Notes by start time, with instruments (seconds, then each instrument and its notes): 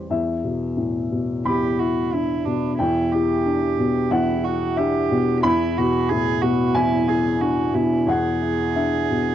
Already playing: upright piano E2 E4 G4 C5
0.10 upright piano E2 E5
0.44 upright piano B2
0.77 upright piano A2
1.11 upright piano B2
1.45 upright piano E2 B5, cello G4
1.79 upright piano E4, cello F#4
2.13 upright piano D4, cello E4
2.46 upright piano B2, cello D4
2.79 upright piano E2 G5, cello E4
3.12 upright piano E4, cello G4
3.45 upright piano D4
3.78 upright piano B2
4.11 upright piano E2 F#5, cello E4
4.43 upright piano E4, cello F#4
4.76 upright piano D4 E5, cello G4
5.11 upright piano B2
5.43 upright piano E2 B5, cello E4
5.78 upright piano B2, cello F#4
6.10 upright piano A2, cello G#4
6.42 upright piano B2, cello F#4
6.74 upright piano E2 G#5, cello E4
7.07 upright piano E4, cello G#4
7.40 upright piano D4, cello F#4
7.73 upright piano B2, cello E4
8.06 upright piano E2 F#5, cello G#4
8.41 upright piano E4
8.75 upright piano D4 E5
9.10 upright piano B2